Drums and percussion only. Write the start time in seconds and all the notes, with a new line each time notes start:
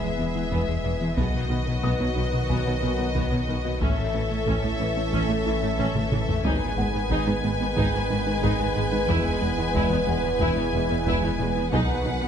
0.52 taiko
1.18 taiko
1.84 taiko
2.50 taiko
3.16 taiko
3.81 taiko
4.48 taiko
5.13 taiko
5.79 taiko mid
5.96 taiko mid
6.12 taiko mid
6.29 taiko low
6.45 taiko
7.11 taiko
7.77 taiko
8.43 taiko
9.09 taiko
9.76 taiko
10.41 taiko
11.07 taiko
11.73 taiko